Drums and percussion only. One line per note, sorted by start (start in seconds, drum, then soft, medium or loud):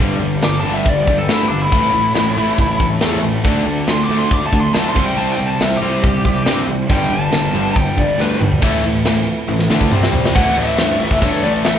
0.42 snare loud
0.42 crash medium
0.86 kick loud
0.86 crash medium
1.07 kick medium
1.29 snare loud
1.29 crash medium
1.72 kick loud
1.72 crash medium
2.15 snare loud
2.15 crash medium
2.58 kick loud
2.58 crash medium
2.80 kick medium
3.01 snare loud
3.01 crash medium
3.44 kick loud
3.44 crash medium
3.87 snare loud
3.87 crash medium
4.31 kick loud
4.31 crash medium
4.53 kick medium
4.74 snare loud
4.74 crash medium
4.96 kick loud
4.96 crash medium
5.18 crash medium
5.61 snare loud
5.61 crash medium
6.04 kick loud
6.04 crash medium
6.25 kick medium
6.46 snare loud
6.46 crash medium
6.90 kick loud
6.90 crash medium
7.32 snare loud
7.32 crash medium
7.76 kick loud
7.76 crash medium
7.98 kick medium
8.20 snare medium
8.41 mid tom medium
8.52 floor tom medium
8.62 kick loud
8.62 crash loud
8.62 crash medium
8.84 crash medium
9.05 snare loud
9.05 crash medium
9.27 crash medium
9.48 high tom medium
9.59 snare medium
9.70 snare medium
9.81 kick medium
9.92 mid tom medium
10.03 snare medium
10.13 floor tom loud
10.25 snare medium
10.36 kick loud
10.36 crash loud
10.57 crash medium
10.78 snare loud
10.78 crash medium
11.00 crash medium
11.11 kick medium
11.22 kick loud
11.22 crash medium
11.44 crash medium
11.64 snare loud
11.64 crash medium